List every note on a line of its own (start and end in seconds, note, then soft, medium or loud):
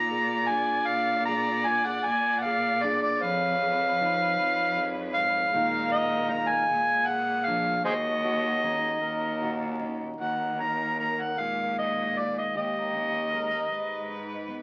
0.00 0.84 A#2 loud
0.00 1.27 A#2 medium
0.00 1.97 F4 medium
0.00 0.10 A#4 medium
0.00 3.24 D5 loud
0.00 0.50 A#5 loud
0.11 0.49 G#4 medium
0.49 2.01 D4 medium
0.49 1.28 G#4 medium
0.49 0.88 G#5 medium
0.87 2.02 A#2 loud
0.87 1.25 F5 loud
1.26 2.04 A#2 medium
1.26 1.67 G#4 medium
1.26 3.53 D5 medium
1.26 1.67 A#5 loud
1.66 1.85 F4 medium
1.66 1.87 G#5 medium
1.85 2.05 G#4 medium
1.85 2.07 F#5 medium
2.05 3.22 A#2 medium
2.05 3.18 A#2 loud
2.05 2.41 G#5 loud
2.39 2.45 F#5 medium
2.43 2.84 G#4 medium
2.43 2.84 F5 medium
2.82 3.18 D4 medium
2.82 3.61 G#4 medium
2.82 3.02 D5 medium
3.03 3.24 D5 medium
3.22 4.37 F2 medium
3.22 4.34 F2 loud
3.22 5.55 B4 loud
3.22 5.45 C#5 medium
3.22 4.97 F5 loud
3.62 5.49 G#4 medium
4.00 5.49 F3 medium
4.00 5.50 D#4 medium
4.37 5.49 F2 loud
4.37 4.76 F2 medium
4.77 5.88 G#4 medium
5.14 5.54 G#2 medium
5.14 5.88 F5 medium
5.53 6.65 A#2 loud
5.53 6.31 A#2 medium
5.53 6.30 D#3 medium
5.53 9.03 G#3 medium
5.53 6.30 D#4 medium
5.53 5.91 F4 medium
5.53 6.67 A#4 loud
5.53 7.04 F5 medium
5.92 7.08 F4 medium
5.92 6.32 D#5 loud
6.31 6.70 D#3 medium
6.31 6.65 D#4 medium
6.31 6.50 A#5 medium
6.48 7.08 G#5 loud
6.68 7.85 A#2 medium
6.68 7.82 A#2 medium
6.68 7.81 G#4 loud
7.07 7.81 G#4 medium
7.07 7.47 F#5 loud
7.45 7.81 F3 medium
7.45 7.82 D4 medium
7.45 7.84 F5 medium
7.84 8.99 D#2 loud
7.84 10.19 D#2 medium
7.84 8.65 F#4 medium
7.84 7.92 G#4 medium
7.84 7.93 C5 medium
7.84 9.77 D#5 medium
8.25 9.41 F#4 medium
8.63 12.54 D#3 medium
8.63 9.79 C#4 medium
8.63 9.01 G#4 medium
8.63 10.55 A#5 medium
9.02 10.16 D#2 loud
9.02 9.77 A#4 medium
9.41 10.20 A#2 medium
9.41 10.16 F#4 medium
9.41 10.56 D#5 medium
9.80 10.16 C#4 medium
10.19 11.34 D#2 medium
10.19 11.38 D#2 medium
10.19 11.34 F#4 medium
10.19 11.38 A#4 medium
10.19 10.62 F#5 medium
10.60 11.34 D#4 medium
10.60 10.99 A#5 medium
10.99 12.17 A#3 medium
10.99 11.73 A#4 soft
10.99 11.22 A#5 medium
11.21 11.95 D5 soft
11.21 11.42 F#5 medium
11.36 12.55 A#2 medium
11.36 12.51 A#2 medium
11.36 12.89 G#3 soft
11.36 12.55 F4 medium
11.36 12.55 G#4 medium
11.36 11.78 F5 medium
11.62 13.10 F5 soft
11.79 12.20 D#5 medium
12.17 13.32 A#3 medium
12.17 12.37 D5 medium
12.38 12.55 D#5 medium
12.54 13.70 D#2 medium
12.54 13.66 D#2 medium
12.54 13.31 G4 medium
12.54 14.04 G4 soft
12.54 13.66 G4 medium
12.54 14.44 D#5 medium
12.78 14.26 A#5 soft
12.94 13.66 C#4 medium
13.29 13.51 G#3 medium
13.29 13.70 A#4 medium
13.51 13.70 A#3 soft
13.69 14.62 G#2 medium
13.69 14.62 B4 medium
14.08 14.62 D#4 soft
14.08 14.62 G#4 soft
14.32 14.62 D#5 soft
14.48 14.62 B3 medium